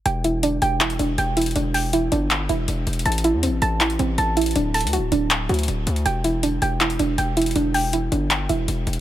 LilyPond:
<<
  \new Staff \with { instrumentName = "Synth pluck" } { \time 4/4 \key e \minor \tempo 4 = 160 g''8 e'8 d'8 g''8 e'8 d'8 g''8 e'8 | d'8 g''8 e'8 d'4 e'4. | a''8 e'8 c'8 a''8 e'8 c'8 a''8 e'8 | d'8 a''8 fis'8 d'4 fis'4. |
g''8 e'8 d'8 g''8 e'8 d'8 g''8 e'8 | d'8 g''8 e'8 d'4 e'4. | }
  \new Staff \with { instrumentName = "808-style bass" } { \clef bass \time 4/4 \key e \minor e,,4. e,,4 e,,8 e,,4 | e,,4. g,,4 e,,8 e,,8 e,,8 | a,,8. e,16. a,,16. a,,4 a,,8 a,,4 | d,,8. d,16. d,,16. d,,4 d,8 d,,8 d,8 |
e,,4. e,,4 e,,8 e,,4 | e,,4. g,,4 e,,8 e,,8 e,,8 | }
  \new DrumStaff \with { instrumentName = "Drums" } \drummode { \time 4/4 hh8 hh8 hh8 hh8 <hc hh>16 hh16 hh8 hh8 hh32 hh32 hh32 hh32 | hh8 hho8 hh8 hh8 <hc hh>8 hh8 \tuplet 3/2 { hh16 r16 r16 hh16 hh16 hh16 } | \tuplet 3/2 { hh16 hh16 hh16 hh16 r16 r16 } hh8 hh8 <hc hh>16 hh16 hh8 hh8 hh32 hh32 hh32 hh32 | \tuplet 3/2 { hh16 r16 r16 <hh hho>16 hh16 hh16 } hh8 hh8 <hc hh>8 hh32 hh32 hh32 hh32 hh8 hh16 hh16 |
hh8 hh8 hh8 hh8 <hc hh>16 hh16 hh8 hh8 hh32 hh32 hh32 hh32 | hh8 hho8 hh8 hh8 <hc hh>8 hh8 \tuplet 3/2 { hh16 r16 r16 hh16 hh16 r16 } | }
>>